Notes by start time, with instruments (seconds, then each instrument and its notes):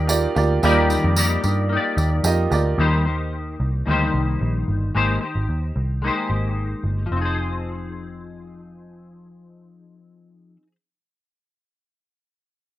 Already playing: picked electric bass D#2, clean electric guitar G3 A#3 D#4 G4 D5, upright piano F4 G4 A#4 D5
0.07 upright piano F4 G4 A#4 D5, tambourine
0.35 picked electric bass D2, upright piano F4 G4 A#4 D5, tambourine
0.63 picked electric bass D#2, clean electric guitar D#3 G3 A#3 D#4 G4 D5, upright piano F4 G4 A#4 D5, tambourine
0.90 tambourine
1.04 picked electric bass F2
1.16 clean electric guitar A#3 D#4 G4 D5, tambourine
1.44 picked electric bass G2, tambourine
1.69 clean electric guitar A#3 D#4
1.75 clean electric guitar G4 D5
1.97 picked electric bass D#2, tambourine
2.24 picked electric bass F2, upright piano F4 G4 A#4 D#5, tambourine
2.51 picked electric bass D2, upright piano F4 G4 A#4 D5, tambourine
2.78 picked electric bass D#2, clean electric guitar D#3 G3 A#3 D#4 G4 C5
3.05 clean electric guitar A#3 D#4 G4 C5
3.60 picked electric bass C2
3.86 picked electric bass D2, clean electric guitar D#3 G3 A#3 D#4
3.90 clean electric guitar G4 C5
4.14 picked electric bass C2
4.41 picked electric bass A#1
4.68 picked electric bass G1
4.95 picked electric bass G#1, clean electric guitar G#3 A#3 D#4 G4 C5
5.21 clean electric guitar D#4 G4 C5
5.35 picked electric bass G#1
5.49 picked electric bass D#2
5.76 picked electric bass C2
6.02 clean electric guitar G#3 A#3 D#4
6.07 clean electric guitar G4 C5
6.30 picked electric bass G#1
6.84 picked electric bass G1
7.06 clean electric guitar F3
7.11 picked electric bass F1, clean electric guitar C4
7.17 clean electric guitar D#4
7.21 clean electric guitar G#4 C5